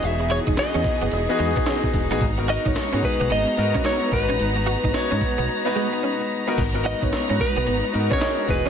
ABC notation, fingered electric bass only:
X:1
M:4/4
L:1/16
Q:"Swing 16ths" 1/4=110
K:G#m
V:1 name="Fingered electric bass" clef=bass
E,,,3 E,,, z E,, z F,,, E,,, z E,, z3 E,,, =A,,, | G,,,3 G,,, z G,, z B,,, G,,, z G,, z3 G,,, =A,,, | G,,,3 G,,, z G,, z B,,, z8 | G,,,3 G,,, z G,, z B,,, G,,, z G,, z3 E,,, ^E,,, |]